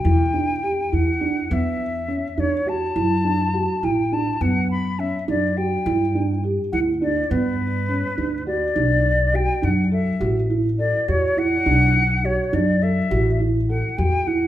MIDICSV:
0, 0, Header, 1, 4, 480
1, 0, Start_track
1, 0, Tempo, 580271
1, 41, Time_signature, 5, 3, 24, 8
1, 11973, End_track
2, 0, Start_track
2, 0, Title_t, "Flute"
2, 0, Program_c, 0, 73
2, 0, Note_on_c, 0, 79, 78
2, 779, Note_on_c, 0, 78, 81
2, 791, Note_off_c, 0, 79, 0
2, 1260, Note_on_c, 0, 76, 79
2, 1273, Note_off_c, 0, 78, 0
2, 1981, Note_on_c, 0, 73, 70
2, 1994, Note_off_c, 0, 76, 0
2, 2220, Note_on_c, 0, 81, 81
2, 2233, Note_off_c, 0, 73, 0
2, 3175, Note_on_c, 0, 79, 73
2, 3187, Note_off_c, 0, 81, 0
2, 3416, Note_on_c, 0, 81, 76
2, 3428, Note_off_c, 0, 79, 0
2, 3650, Note_on_c, 0, 78, 85
2, 3662, Note_off_c, 0, 81, 0
2, 3888, Note_off_c, 0, 78, 0
2, 3894, Note_on_c, 0, 83, 79
2, 4130, Note_on_c, 0, 76, 77
2, 4142, Note_off_c, 0, 83, 0
2, 4368, Note_off_c, 0, 76, 0
2, 4373, Note_on_c, 0, 74, 74
2, 4606, Note_on_c, 0, 79, 76
2, 4619, Note_off_c, 0, 74, 0
2, 5327, Note_off_c, 0, 79, 0
2, 5560, Note_on_c, 0, 78, 93
2, 5615, Note_off_c, 0, 78, 0
2, 5806, Note_on_c, 0, 74, 77
2, 6041, Note_on_c, 0, 71, 86
2, 6053, Note_off_c, 0, 74, 0
2, 7000, Note_off_c, 0, 71, 0
2, 7005, Note_on_c, 0, 74, 72
2, 7735, Note_on_c, 0, 79, 85
2, 7747, Note_off_c, 0, 74, 0
2, 7977, Note_on_c, 0, 78, 78
2, 7989, Note_off_c, 0, 79, 0
2, 8201, Note_off_c, 0, 78, 0
2, 8206, Note_on_c, 0, 76, 72
2, 8654, Note_off_c, 0, 76, 0
2, 8921, Note_on_c, 0, 74, 78
2, 9170, Note_on_c, 0, 73, 81
2, 9182, Note_off_c, 0, 74, 0
2, 9415, Note_on_c, 0, 78, 95
2, 9427, Note_off_c, 0, 73, 0
2, 10132, Note_on_c, 0, 73, 76
2, 10144, Note_off_c, 0, 78, 0
2, 10373, Note_on_c, 0, 74, 71
2, 10385, Note_off_c, 0, 73, 0
2, 10609, Note_on_c, 0, 76, 75
2, 10621, Note_off_c, 0, 74, 0
2, 11086, Note_off_c, 0, 76, 0
2, 11326, Note_on_c, 0, 78, 71
2, 11558, Note_on_c, 0, 79, 75
2, 11570, Note_off_c, 0, 78, 0
2, 11804, Note_on_c, 0, 78, 75
2, 11817, Note_off_c, 0, 79, 0
2, 11973, Note_off_c, 0, 78, 0
2, 11973, End_track
3, 0, Start_track
3, 0, Title_t, "Felt piano"
3, 0, Program_c, 1, 0
3, 40, Note_on_c, 1, 64, 72
3, 169, Note_off_c, 1, 64, 0
3, 280, Note_on_c, 1, 62, 60
3, 408, Note_off_c, 1, 62, 0
3, 521, Note_on_c, 1, 67, 69
3, 649, Note_off_c, 1, 67, 0
3, 761, Note_on_c, 1, 64, 70
3, 889, Note_off_c, 1, 64, 0
3, 1000, Note_on_c, 1, 62, 70
3, 1129, Note_off_c, 1, 62, 0
3, 1243, Note_on_c, 1, 59, 68
3, 1499, Note_off_c, 1, 59, 0
3, 1722, Note_on_c, 1, 61, 67
3, 1850, Note_off_c, 1, 61, 0
3, 1964, Note_on_c, 1, 62, 65
3, 2092, Note_off_c, 1, 62, 0
3, 2203, Note_on_c, 1, 66, 62
3, 2331, Note_off_c, 1, 66, 0
3, 2444, Note_on_c, 1, 64, 70
3, 2572, Note_off_c, 1, 64, 0
3, 2684, Note_on_c, 1, 62, 58
3, 2812, Note_off_c, 1, 62, 0
3, 2926, Note_on_c, 1, 66, 65
3, 3053, Note_off_c, 1, 66, 0
3, 3170, Note_on_c, 1, 64, 71
3, 3297, Note_off_c, 1, 64, 0
3, 3410, Note_on_c, 1, 62, 65
3, 3537, Note_off_c, 1, 62, 0
3, 3648, Note_on_c, 1, 59, 71
3, 3903, Note_off_c, 1, 59, 0
3, 4125, Note_on_c, 1, 61, 64
3, 4254, Note_off_c, 1, 61, 0
3, 4367, Note_on_c, 1, 62, 71
3, 4495, Note_off_c, 1, 62, 0
3, 4610, Note_on_c, 1, 66, 69
3, 4737, Note_off_c, 1, 66, 0
3, 4849, Note_on_c, 1, 64, 77
3, 4976, Note_off_c, 1, 64, 0
3, 5087, Note_on_c, 1, 62, 67
3, 5215, Note_off_c, 1, 62, 0
3, 5325, Note_on_c, 1, 67, 66
3, 5453, Note_off_c, 1, 67, 0
3, 5566, Note_on_c, 1, 64, 75
3, 5695, Note_off_c, 1, 64, 0
3, 5805, Note_on_c, 1, 62, 68
3, 5933, Note_off_c, 1, 62, 0
3, 6044, Note_on_c, 1, 59, 75
3, 6301, Note_off_c, 1, 59, 0
3, 6526, Note_on_c, 1, 61, 67
3, 6654, Note_off_c, 1, 61, 0
3, 6762, Note_on_c, 1, 62, 64
3, 6891, Note_off_c, 1, 62, 0
3, 7004, Note_on_c, 1, 66, 63
3, 7133, Note_off_c, 1, 66, 0
3, 7242, Note_on_c, 1, 62, 71
3, 7499, Note_off_c, 1, 62, 0
3, 7721, Note_on_c, 1, 66, 64
3, 7851, Note_off_c, 1, 66, 0
3, 7958, Note_on_c, 1, 62, 64
3, 8088, Note_off_c, 1, 62, 0
3, 8201, Note_on_c, 1, 69, 68
3, 8331, Note_off_c, 1, 69, 0
3, 8440, Note_on_c, 1, 66, 70
3, 8570, Note_off_c, 1, 66, 0
3, 8685, Note_on_c, 1, 64, 66
3, 8814, Note_off_c, 1, 64, 0
3, 8925, Note_on_c, 1, 69, 66
3, 9054, Note_off_c, 1, 69, 0
3, 9167, Note_on_c, 1, 66, 69
3, 9294, Note_off_c, 1, 66, 0
3, 9405, Note_on_c, 1, 64, 68
3, 9533, Note_off_c, 1, 64, 0
3, 9646, Note_on_c, 1, 62, 77
3, 9901, Note_off_c, 1, 62, 0
3, 10123, Note_on_c, 1, 66, 65
3, 10251, Note_off_c, 1, 66, 0
3, 10362, Note_on_c, 1, 62, 69
3, 10491, Note_off_c, 1, 62, 0
3, 10607, Note_on_c, 1, 69, 68
3, 10734, Note_off_c, 1, 69, 0
3, 10842, Note_on_c, 1, 66, 75
3, 10971, Note_off_c, 1, 66, 0
3, 11084, Note_on_c, 1, 64, 65
3, 11212, Note_off_c, 1, 64, 0
3, 11326, Note_on_c, 1, 69, 66
3, 11453, Note_off_c, 1, 69, 0
3, 11565, Note_on_c, 1, 66, 68
3, 11692, Note_off_c, 1, 66, 0
3, 11803, Note_on_c, 1, 64, 67
3, 11930, Note_off_c, 1, 64, 0
3, 11973, End_track
4, 0, Start_track
4, 0, Title_t, "Upright bass"
4, 0, Program_c, 2, 32
4, 39, Note_on_c, 2, 40, 89
4, 620, Note_off_c, 2, 40, 0
4, 766, Note_on_c, 2, 40, 69
4, 1151, Note_off_c, 2, 40, 0
4, 1248, Note_on_c, 2, 40, 92
4, 1826, Note_off_c, 2, 40, 0
4, 1964, Note_on_c, 2, 40, 66
4, 2351, Note_off_c, 2, 40, 0
4, 2446, Note_on_c, 2, 42, 80
4, 3025, Note_off_c, 2, 42, 0
4, 3167, Note_on_c, 2, 33, 76
4, 3553, Note_off_c, 2, 33, 0
4, 3647, Note_on_c, 2, 42, 89
4, 4226, Note_off_c, 2, 42, 0
4, 4368, Note_on_c, 2, 42, 72
4, 4754, Note_off_c, 2, 42, 0
4, 4847, Note_on_c, 2, 43, 91
4, 5426, Note_off_c, 2, 43, 0
4, 5565, Note_on_c, 2, 38, 76
4, 5952, Note_off_c, 2, 38, 0
4, 6046, Note_on_c, 2, 43, 92
4, 6626, Note_off_c, 2, 43, 0
4, 6766, Note_on_c, 2, 38, 72
4, 7153, Note_off_c, 2, 38, 0
4, 7243, Note_on_c, 2, 35, 80
4, 7824, Note_off_c, 2, 35, 0
4, 7967, Note_on_c, 2, 42, 81
4, 8353, Note_off_c, 2, 42, 0
4, 8443, Note_on_c, 2, 33, 86
4, 9024, Note_off_c, 2, 33, 0
4, 9167, Note_on_c, 2, 40, 85
4, 9553, Note_off_c, 2, 40, 0
4, 9644, Note_on_c, 2, 35, 87
4, 10224, Note_off_c, 2, 35, 0
4, 10365, Note_on_c, 2, 42, 86
4, 10751, Note_off_c, 2, 42, 0
4, 10846, Note_on_c, 2, 33, 97
4, 11424, Note_off_c, 2, 33, 0
4, 11567, Note_on_c, 2, 40, 85
4, 11951, Note_off_c, 2, 40, 0
4, 11973, End_track
0, 0, End_of_file